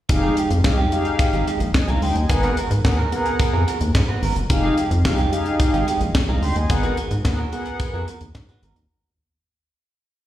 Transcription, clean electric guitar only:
0.09 muted clean electric guitar stroke soft
0.23 0.35 G#3 medium
0.23 0.36 D#4 medium
0.23 0.38 G#4 medium
0.36 0.52 G#3 medium
0.36 0.50 D#4 medium
0.36 0.49 G4 medium
0.50 muted clean electric guitar stroke soft
0.64 muted clean electric guitar stroke soft
0.78 0.90 G#3 medium
0.78 0.91 D#4 medium
0.78 0.92 G4 medium
0.91 1.07 G#3 medium
0.91 1.05 D#4 medium
0.91 1.04 G4 medium
1.05 muted clean electric guitar stroke soft
1.19 muted clean electric guitar stroke soft
1.33 1.45 G#3 soft
1.33 1.46 D#4 medium
1.33 1.47 G4 medium
1.47 1.66 G#3 medium
1.47 1.60 D#4 medium
1.47 1.59 G4 loud
1.60 muted clean electric guitar stroke soft
1.74 muted clean electric guitar stroke soft
1.88 2.00 G#3 medium
1.88 2.01 D#4 medium
1.88 2.03 G#4 medium
2.02 2.17 G#3 medium
2.02 2.16 D#4 medium
2.02 2.14 G4 medium
2.16 muted clean electric guitar stroke soft
2.29 muted clean electric guitar stroke soft
2.43 2.56 B3 medium
2.43 2.57 F#4 medium
2.43 2.58 B4 medium
2.57 2.72 B3 medium
2.57 2.71 F#4 medium
2.57 2.70 A#4 medium
2.71 muted clean electric guitar stroke soft
2.85 muted clean electric guitar stroke soft
2.98 3.11 B3 medium
2.98 3.11 F#4 medium
2.98 3.12 A#4 medium
3.12 3.27 B3 medium
3.12 3.26 F#4 medium
3.12 3.25 A#4 medium
3.26 muted clean electric guitar stroke soft
3.40 muted clean electric guitar stroke soft
3.53 3.66 B3 medium
3.53 3.67 F#4 medium
3.53 3.67 A#4 medium
3.67 3.87 B3 medium
3.67 3.81 F#4 medium
3.67 3.80 A#4 medium
3.81 muted clean electric guitar stroke soft
3.95 muted clean electric guitar stroke soft
4.08 4.20 B3 medium
4.08 4.21 F#4 medium
4.08 4.23 B4 medium
4.22 4.37 B3 medium
4.22 4.36 F#4 medium
4.22 4.34 A#4 medium
4.36 muted clean electric guitar stroke soft
4.49 muted clean electric guitar stroke soft
4.63 4.76 G#3 medium
4.63 4.77 D#4 medium
4.63 4.78 G#4 medium
4.77 4.92 G#3 medium
4.77 4.91 D#4 medium
4.77 4.89 G4 medium
4.91 muted clean electric guitar stroke soft
5.04 muted clean electric guitar stroke soft
5.18 5.30 G#3 medium
5.18 5.31 D#4 medium
5.18 5.32 G4 medium
5.32 5.47 G#3 medium
5.32 5.45 D#4 medium
5.32 5.44 G4 medium
5.46 muted clean electric guitar stroke medium
5.59 muted clean electric guitar stroke soft
5.73 5.86 G#3 medium
5.73 5.87 D#4 medium
5.73 5.87 G4 medium
5.87 6.07 G#3 medium
5.87 6.01 D#4 medium
5.87 6.00 G4 medium
6.01 muted clean electric guitar stroke medium
6.15 muted clean electric guitar stroke soft
6.29 6.41 G#3 medium
6.29 6.42 D#4 medium
6.29 6.43 G#4 medium
6.42 6.57 G#3 medium
6.42 6.56 D#4 medium
6.42 6.55 G4 medium
6.56 muted clean electric guitar stroke soft
6.70 muted clean electric guitar stroke soft
6.83 6.96 B3 medium
6.83 6.97 F#4 medium
6.83 6.98 B4 medium
6.97 7.13 B3 medium
6.97 7.11 F#4 medium
6.97 7.10 A#4 medium
7.11 muted clean electric guitar stroke soft
7.25 muted clean electric guitar stroke soft
7.38 7.51 B3 medium
7.38 7.52 F#4 medium
7.38 7.52 A#4 medium
7.52 7.67 B3 medium
7.52 7.66 F#4 medium
7.52 7.65 A#4 medium
7.66 muted clean electric guitar stroke soft
7.80 muted clean electric guitar stroke soft
7.94 8.06 B3 medium
7.94 8.07 F#4 medium
7.94 8.08 A#4 medium
8.07 8.27 B3 medium
8.07 8.21 F#4 medium
8.07 8.20 A#4 medium
8.21 muted clean electric guitar stroke soft
8.35 muted clean electric guitar stroke soft
8.49 8.61 B3 medium
8.49 8.62 F#4 medium
8.49 8.64 B4 medium
8.62 8.78 B3 medium
8.62 8.76 F#4 medium
8.62 8.75 A#4 medium
8.76 muted clean electric guitar stroke soft

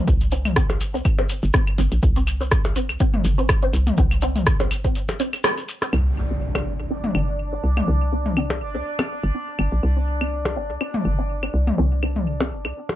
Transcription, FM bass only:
0.08 0.82 C2 loud
0.81 0.96 G1 loud
0.94 1.02 C2 loud
1.43 1.51 G1 medium
1.78 1.88 G1 medium
1.92 2.00 A#1 medium
2.03 2.77 C2 loud
2.76 2.91 G1 loud
2.89 2.97 C2 loud
3.25 3.68 G1 medium
3.73 3.92 C2 medium
3.98 4.73 C2 loud
4.71 4.86 G1 medium
4.84 4.92 C2 loud
5.93 6.68 C2 loud
6.66 6.81 G1 loud
6.80 6.87 C2 medium
7.15 7.59 G1 medium
7.64 7.82 C2 medium
7.88 8.63 C2 loud
8.61 8.76 G1 medium
8.75 8.83 C2 loud
9.23 9.31 G1 medium
9.59 9.68 G1 medium
9.72 9.80 A#1 medium
9.83 10.58 C2 loud
10.56 10.71 G1 loud
10.70 10.78 C2 loud
11.05 11.49 G1 medium
11.54 11.72 C2 medium
11.78 12.53 C2 loud
12.51 12.66 G1 medium
12.65 12.73 C2 loud

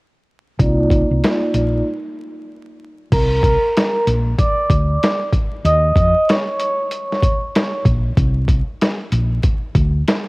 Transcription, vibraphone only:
0.59 1.49 A#3 medium
0.59 1.50 D#4 medium
0.59 1.50 F4 medium
0.59 1.50 D5 medium
1.54 1.79 A#3 medium
1.54 1.79 D#4 medium
1.54 1.79 F4 medium
1.54 1.79 D5 medium
3.12 4.03 A#4 loud
3.12 4.03 A#5 medium
4.38 5.29 D5 medium
4.38 5.29 D6 medium
5.65 6.30 D#5 loud
5.65 6.24 D#6 medium
6.28 7.82 C#5 medium
6.28 7.82 C#6 medium

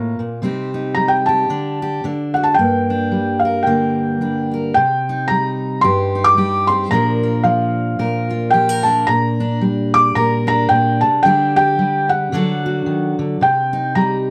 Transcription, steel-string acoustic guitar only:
0.00 0.19 A2 medium
0.00 0.42 A#3 medium
0.00 0.40 F4 medium
0.19 0.42 A#2 medium
0.42 1.49 C3 medium
0.42 0.95 G3 soft
0.42 1.49 C4 medium
0.42 0.73 D#4 soft
0.42 1.27 G4 medium
0.74 1.48 D#4 medium
0.96 1.48 G3 medium
1.29 1.81 G4 medium
1.50 2.02 D3 medium
1.50 2.02 D4 medium
1.82 2.05 G4 medium
2.04 2.56 D3 medium
2.04 2.56 D4 soft
2.36 2.56 F#4 medium
2.58 4.75 G2 medium
2.58 3.66 A#3 soft
2.90 4.21 D4 soft
3.12 4.20 G3 medium
3.45 4.52 A#4 medium
3.66 4.72 D3 medium
3.66 4.75 A#3 soft
4.21 4.73 G3 medium
4.21 4.76 D4 soft
4.54 4.73 A#4 medium
4.77 5.84 C3 medium
5.09 6.14 D#4 medium
5.30 6.36 G3 medium
5.84 6.90 G2 medium
5.84 6.36 G4 medium
6.15 6.89 D#4 medium
6.37 6.89 G3 medium
6.37 6.92 G4 medium
6.69 6.89 C4 medium
6.91 7.99 A#2 medium
6.91 7.43 F3 medium
6.91 8.85 D4 medium
6.91 7.22 F4 medium
6.91 7.99 A#4 medium
7.23 8.29 F4 medium
7.44 8.53 F3 medium
7.99 9.05 A#2 medium
7.99 8.53 A#4 medium
8.31 9.05 F4 medium
8.54 9.08 F3 medium
8.54 8.69 G4 medium
8.69 9.08 A#4 soft
8.86 9.40 D4 medium
9.09 10.14 A#2 medium
9.40 10.46 D4 medium
9.61 11.22 G3 medium
10.15 10.69 A#2 medium
10.15 11.22 A#4 medium
10.47 11.25 D4 medium
10.70 11.02 A#2 medium
11.02 11.24 C3 medium
11.25 12.30 D3 medium
11.25 11.78 G3 medium
11.25 12.31 D4 medium
11.25 11.55 G4 medium
11.56 12.33 G4 medium
11.79 12.30 G3 medium
12.32 12.86 D3 medium
12.32 13.39 F#3 medium
12.32 13.39 D4 medium
12.32 12.65 F#4 medium
12.32 13.40 A4 medium
12.66 13.39 F#4 medium
12.86 13.18 D#3 medium
13.19 13.41 D3 medium
13.41 14.30 C3 medium
13.73 14.30 D#4 medium
13.96 14.30 G3 medium

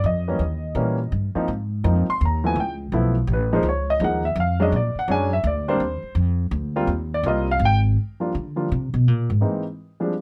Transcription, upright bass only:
0.04 0.38 F2 medium
0.39 0.74 D#2 medium
0.75 1.10 A#2 medium
1.12 1.34 G2 medium
1.35 muted upright bass stroke soft
1.48 1.83 G#2 medium
1.84 2.06 F2 medium
2.09 muted upright bass stroke soft
2.21 2.55 D#2 loud
2.56 2.91 C#2 medium
2.92 3.27 B1 medium
3.27 3.62 A1 medium
3.63 3.99 C#2 medium
4.00 4.35 D#2 medium
4.36 4.71 F2 loud
4.72 4.94 A#2 medium
4.95 muted upright bass stroke soft
5.08 5.43 F#2 medium
5.44 5.79 D2 loud
5.80 6.02 D#2 medium
6.02 muted upright bass stroke soft
6.15 6.51 F2 medium
6.51 6.87 D2 loud
6.87 7.23 D#2 medium
7.23 7.59 C2 loud
7.59 7.95 G#1 loud
8.35 8.67 D3 medium
8.72 8.93 C3 medium
8.94 9.08 B2 medium
9.08 9.29 A#2 medium
9.30 9.42 G#2 medium

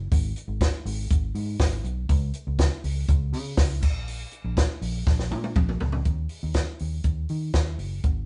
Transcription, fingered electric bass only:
0.12 0.32 G#1 loud
0.48 0.68 G#1 medium
0.85 1.06 G#1 loud
1.10 1.31 G#1 loud
1.35 1.55 G#2 medium
1.60 1.80 G#1 medium
1.84 2.05 B1 loud
2.09 2.30 C#2 loud
2.47 2.67 C#2 medium
2.84 3.04 C#2 medium
3.08 3.34 C#2 loud
3.33 3.53 C#3 loud
3.58 3.83 C#2 medium
3.83 4.23 A#1 loud
4.44 4.65 A#1 loud
4.82 5.02 A#1 medium
5.07 5.33 A#1 loud
5.31 5.52 A#2 loud
5.56 5.76 A#1 medium
5.81 6.01 C#2 medium
6.05 6.26 D#2 medium
6.43 6.63 D#2 medium
6.81 7.01 D#2 medium
7.04 7.25 D#2 medium
7.30 7.50 D#3 medium
7.54 7.75 D#2 medium
7.78 7.99 F#1 medium
8.04 8.24 G#1 loud

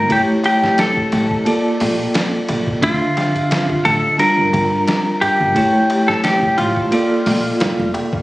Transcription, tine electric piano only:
0.00 0.12 G3 medium
0.00 0.12 A#3 medium
0.00 0.12 D4 medium
0.00 0.12 F4 medium
0.09 1.40 A3 medium
0.09 1.41 E4 medium
0.09 1.41 G4 medium
0.09 1.42 C#5 medium
1.45 2.76 A#3 medium
1.45 2.77 F4 medium
1.45 2.77 A4 medium
1.45 2.78 D5 medium
2.81 4.12 D3 medium
2.81 4.13 D4 medium
2.81 4.14 F4 medium
2.81 4.14 E5 medium
4.18 5.49 G3 medium
4.18 5.50 D4 medium
4.18 5.50 F4 medium
4.18 5.51 A#4 medium
5.55 6.85 A3 medium
5.55 6.86 E4 medium
5.55 6.86 G4 medium
5.55 6.87 C#5 medium
6.91 8.22 A#3 medium
6.91 8.22 F4 medium
6.91 8.22 A4 medium
6.91 8.22 D5 medium

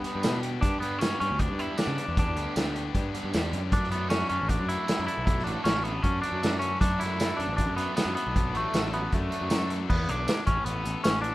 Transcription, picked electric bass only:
0.15 0.23 G2 medium
0.24 0.58 B2 medium
0.63 1.13 G2 medium
1.21 1.30 G2 medium
1.31 1.47 D2 medium
1.50 1.67 G2 medium
1.87 1.96 C#3 medium
2.08 2.37 E2 medium
2.37 2.45 D2 medium
2.56 2.90 D2 medium
2.95 3.11 G2 medium
3.24 3.32 G2 medium
3.35 3.52 E2 medium
3.53 3.70 F#2 medium
3.73 4.23 F#2 medium
4.30 4.39 F#2 medium
4.42 4.58 A1 medium
4.60 4.77 F#2 medium
4.99 5.07 F#2 medium
5.18 5.47 B1 medium
5.47 5.55 A1 medium
5.65 5.99 A1 medium
6.04 6.21 F#2 medium
6.32 6.41 F#2 medium
6.43 6.77 F#2 medium
6.81 7.31 F#2 medium
7.40 7.47 F#2 medium
7.48 7.65 A1 medium
7.67 7.84 F#2 medium
8.06 8.15 F#2 medium
8.27 8.55 B1 medium
8.55 8.64 A1 medium
8.74 9.08 A1 medium
9.13 9.30 F#2 medium
9.41 9.50 F#2 medium
9.50 9.84 F#2 medium
9.90 10.07 E2 medium
10.08 10.26 B1 medium
10.48 10.56 A1 medium
10.65 10.83 A1 medium
10.86 10.94 A1 medium
11.06 11.31 A1 medium

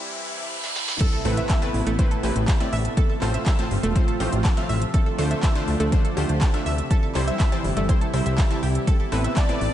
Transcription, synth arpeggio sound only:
1.00 1.09 A4 loud
1.00 1.09 A5 medium
1.13 1.18 A4 medium
1.13 1.18 A5 medium
1.25 1.28 A4 medium
1.25 1.28 A5 medium
1.37 1.43 E5 medium
1.37 1.43 E6 medium
1.50 1.58 E5 loud
1.50 1.58 E6 medium
1.62 1.70 A5 medium
1.62 1.70 A6 medium
1.87 1.92 A3 loud
1.87 1.92 A4 medium
1.99 2.04 C5 medium
1.99 2.04 C6 medium
2.11 2.17 A4 medium
2.11 2.17 A5 medium
2.23 2.32 G4 medium
2.23 2.32 G5 medium
2.48 2.51 A5 medium
2.48 2.51 A6 medium
2.60 2.64 E5 medium
2.60 2.64 E6 medium
2.73 2.78 E5 loud
2.73 2.78 E6 medium
2.97 3.06 A4 loud
2.97 3.06 A5 medium
3.10 3.15 A4 medium
3.10 3.15 A5 medium
3.22 3.25 A4 medium
3.22 3.25 A5 medium
3.34 3.40 E5 medium
3.34 3.40 E6 medium
3.46 3.55 E5 loud
3.46 3.55 E6 medium
3.59 3.67 A5 medium
3.59 3.67 A6 medium
3.83 3.89 A3 loud
3.83 3.89 A4 medium
3.96 4.01 C5 medium
3.96 4.01 C6 medium
4.08 4.13 A4 medium
4.08 4.13 A5 medium
4.20 4.29 G4 medium
4.20 4.29 G5 medium
4.45 4.48 A5 medium
4.45 4.48 A6 medium
4.57 4.60 E5 medium
4.57 4.60 E6 medium
4.69 4.75 E5 loud
4.69 4.75 E6 medium
4.94 5.02 A4 loud
4.94 5.02 A5 medium
5.06 5.12 A4 medium
5.06 5.12 A5 medium
5.18 5.22 A4 medium
5.18 5.22 A5 medium
5.31 5.36 E5 medium
5.31 5.36 E6 medium
5.43 5.51 E5 loud
5.43 5.51 E6 medium
5.55 5.64 A5 medium
5.55 5.64 A6 medium
5.80 5.86 A3 loud
5.80 5.86 A4 medium
5.92 5.98 C5 medium
5.92 5.98 C6 medium
6.05 6.10 A4 medium
6.05 6.10 A5 medium
6.17 6.25 G4 medium
6.17 6.25 G5 medium
6.41 6.45 A5 medium
6.41 6.45 A6 medium
6.54 6.57 E5 medium
6.54 6.57 E6 medium
6.66 6.72 E5 loud
6.66 6.72 E6 medium
6.91 6.99 A4 loud
6.91 6.99 A5 medium
7.03 7.08 A4 medium
7.03 7.08 A5 medium
7.15 7.19 A4 medium
7.15 7.19 A5 medium
7.28 7.33 E5 medium
7.28 7.33 E6 medium
7.40 7.48 E5 loud
7.40 7.48 E6 medium
7.52 7.60 A5 medium
7.52 7.60 A6 medium
7.77 7.82 A3 loud
7.77 7.82 A4 medium
7.89 7.95 C5 medium
7.89 7.95 C6 medium
8.01 8.07 A4 medium
8.01 8.07 A5 medium
8.14 8.19 E5 medium
8.14 8.19 E6 medium
8.26 8.34 E5 medium
8.26 8.34 E6 medium
8.38 8.42 A4 medium
8.38 8.42 A5 medium
8.51 8.56 A5 medium
8.51 8.56 A6 medium
8.63 8.71 G4 medium
8.63 8.71 G5 medium
8.87 8.96 A4 loud
8.87 8.96 A5 medium
9.00 9.05 A4 medium
9.00 9.05 A5 medium
9.12 9.15 A4 medium
9.12 9.15 A5 medium
9.24 9.30 E5 medium
9.24 9.30 E6 medium
9.37 9.45 E5 loud
9.37 9.45 E6 medium
9.49 9.57 A5 medium
9.49 9.57 A6 medium

